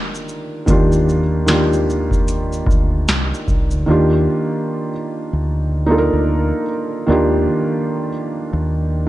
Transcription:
Already playing: D#3 A#3 D4 F4 A#4
0.15 shaker
0.29 shaker
0.66 D#2 D#3 A#3 D4 F4, kick, closed hi-hat, shaker
0.71 G4
0.92 shaker
1.09 shaker
1.46 D#3 A#3 D4 F4, snare, closed hi-hat, shaker
1.52 G4
1.73 shaker
1.90 shaker
2.11 kick, shaker
2.28 closed hi-hat, shaker
2.53 shaker
2.67 D2, kick
2.71 shaker
3.08 C2, snare, closed hi-hat, shaker
3.34 shaker
3.48 C2, kick, shaker
3.71 D2, shaker
3.86 D#2 D#3 A#3 D4 F4
3.91 G4
5.33 D2
5.86 A#3 D4 D#4
5.91 F4 A4
5.98 A#4
6.13 D2
7.06 D#2 D#3 A#3 D4 F4
7.12 G4
8.53 D#2

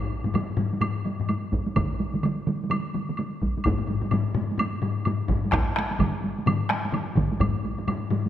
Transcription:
0.24 taiko low-mid, taiko high
0.34 taiko low-mid, taiko high, high woodblock
0.57 taiko low-mid, taiko high
0.73 taiko high
0.81 taiko low-mid, taiko high, high woodblock
1.05 taiko low-mid, taiko high
1.20 taiko low-mid
1.29 taiko high, high woodblock
1.52 taiko, taiko high
1.66 taiko high
1.76 taiko, taiko mid, taiko high, high woodblock
2.00 taiko high
2.14 taiko mid, taiko high
2.23 taiko mid, taiko high, high woodblock
2.47 taiko mid, taiko high
2.63 taiko high
2.70 taiko mid, taiko high, high woodblock
2.94 taiko mid, taiko high
3.09 taiko mid
3.17 taiko high, high woodblock
3.42 taiko, taiko high
3.57 taiko high
3.64 taiko, taiko low-mid, taiko high, high woodblock
3.78 taiko low-mid
3.87 taiko low-mid, taiko high
4.01 taiko low-mid, taiko high
4.11 taiko low-mid, taiko high, high woodblock
4.35 taiko low-mid, taiko high
4.51 taiko high
4.58 taiko low-mid, taiko high, high woodblock
4.82 taiko low-mid, taiko high
5.05 taiko low-mid, taiko high, high woodblock
5.28 taiko, taiko low-mid, taiko high
5.45 taiko high
5.52 taiko rim, taiko, taiko high, high woodblock
5.54 taiko rim
5.76 taiko rim, taiko high
5.92 taiko high
5.99 taiko, taiko low-mid, taiko mid, taiko high, high woodblock
6.24 taiko high
6.39 taiko high
6.46 taiko low-mid, taiko mid, taiko high, high woodblock
6.69 taiko rim, taiko high
6.85 taiko high
6.92 taiko low-mid, taiko mid, taiko high, high woodblock
7.16 taiko, taiko low-mid, taiko mid, taiko high
7.32 taiko high
7.40 taiko, taiko low-mid, taiko high, high woodblock
7.65 taiko high
7.78 taiko low-mid, taiko high
7.88 taiko low-mid, taiko high, high woodblock
8.10 taiko low-mid, taiko high
8.26 taiko high

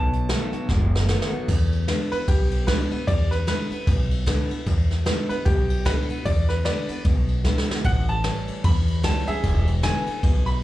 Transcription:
Already playing: B1 B2 F#3 A5
0.13 closed hi-hat
0.29 B2 D#3 F#3 A3 B3 F#4, snare, closed hi-hat
0.53 B2 F#3 B3 F#4, muted upright bass stroke, closed hi-hat
0.69 F#1 F#2 B2 G#3, kick, snare
0.95 snare
1.08 B2 D#3 F#3 A3 B3 F#4, snare
1.22 snare
1.32 B2 F#3 B3 F#4, muted upright bass stroke
1.48 E2, kick, crash
1.72 ride
1.88 D3 G#3 B3 E4, snare, ride
2.12 B3 E4 B4, muted upright bass stroke, ride
2.28 B1 B2 G4, kick, ride
2.51 ride
2.67 D3 G#3 B3 E4 B4, kick, snare, ride
2.91 B3 E4, muted upright bass stroke, ride
3.07 E2 D5, kick, ride
3.31 B4, snare, ride
3.47 D3 G#3 B3 E4 B4, snare, ride
3.71 B3 E4, muted upright bass stroke, ride
3.87 B1 B2, kick, ride
4.11 ride
4.26 D3 G#3 B3 E4, kick, snare, ride
4.50 B3 E4, muted upright bass stroke, ride
4.67 E2, kick, ride
4.91 snare, ride
5.06 D3 G#3 B3 E4, snare, ride
5.29 B3 E4 B4, muted upright bass stroke, ride
5.45 B1 B2 G4, kick, ride
5.70 ride
5.85 D3 G#3 B3 E4 B4, kick, snare, ride
6.09 B3 E4, muted upright bass stroke, ride
6.25 E2 D5, kick, ride
6.49 B4, snare, ride
6.65 D3 G#3 B3 E4 B4 D5, snare, ride
6.89 B3 E4, muted upright bass stroke, ride
7.05 B1 B2, kick, ride
7.28 ride
7.44 D3 G#3 B3 E4, kick, snare
7.58 snare
7.68 B3 E4, muted upright bass stroke, snare
7.84 A1 A2 F#5, kick, ride
8.08 A5, ride
8.24 E3 G3 C#4 E4, snare, ride
8.48 muted upright bass stroke, ride
8.64 E2 B5, kick, ride
8.88 ride
9.03 E3 G3 C#4 E4 A5, kick, snare, ride
9.27 C#4 E4 G#4 E5, muted upright bass stroke, ride
9.44 E1 E2, kick, ride
9.67 ride
9.83 D3 G#3 B3 E4 G#5, snare, ride
10.07 B3 E4, muted upright bass stroke, ride
10.23 B1 B2, kick, ride
10.46 B5, ride

